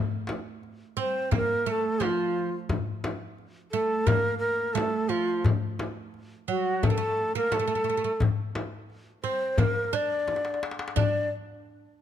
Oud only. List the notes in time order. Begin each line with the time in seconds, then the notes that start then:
0.97 C4
1.31 A#3
1.66 A3
2.00 F3
3.73 A3
4.07 A#3
4.75 A3
5.09 F3
6.48 F#3
6.83 A3
6.90 A#3
6.98 A3
7.35 A#3
7.52 A3
7.59 A3
7.67 A3
7.75 A3
7.84 A3
7.89 A3
7.97 A3
8.04 A3
9.24 C4
9.59 A#3
9.93 D4
10.96 D4